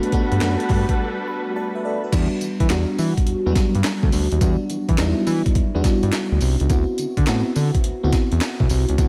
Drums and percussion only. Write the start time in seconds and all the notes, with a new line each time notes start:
0.03 closed hi-hat
0.12 kick, closed hi-hat
0.32 closed hi-hat
0.41 snare, clap, closed hi-hat
0.60 closed hi-hat
0.69 kick, clap, open hi-hat
0.89 kick, closed hi-hat
2.12 kick, closed hi-hat, crash, tambourine
2.41 closed hi-hat, tambourine
2.60 kick, closed hi-hat
2.70 snare, clap, closed hi-hat, tambourine
2.98 open hi-hat, tambourine
3.17 kick, closed hi-hat
3.27 closed hi-hat
3.55 kick, snare, closed hi-hat, tambourine
3.75 closed hi-hat
3.84 snare, clap, closed hi-hat, tambourine
4.03 kick
4.12 open hi-hat, tambourine
4.32 closed hi-hat
4.41 kick, closed hi-hat, tambourine
4.70 closed hi-hat, tambourine
4.89 kick, closed hi-hat
4.98 snare, clap, closed hi-hat, tambourine
5.27 open hi-hat, tambourine
5.46 kick, closed hi-hat
5.55 kick, closed hi-hat
5.84 kick, snare, closed hi-hat, tambourine
6.03 closed hi-hat
6.12 snare, clap, closed hi-hat, tambourine
6.41 open hi-hat, tambourine
6.60 closed hi-hat
6.70 kick, closed hi-hat, tambourine
6.98 closed hi-hat, tambourine
7.17 kick, closed hi-hat
7.27 snare, clap, closed hi-hat, tambourine
7.56 open hi-hat, tambourine
7.74 kick, closed hi-hat
7.84 closed hi-hat
8.12 kick, snare, closed hi-hat, tambourine
8.32 closed hi-hat
8.41 snare, clap, closed hi-hat, tambourine
8.60 kick
8.69 open hi-hat, tambourine
8.89 closed hi-hat
8.98 kick, closed hi-hat, tambourine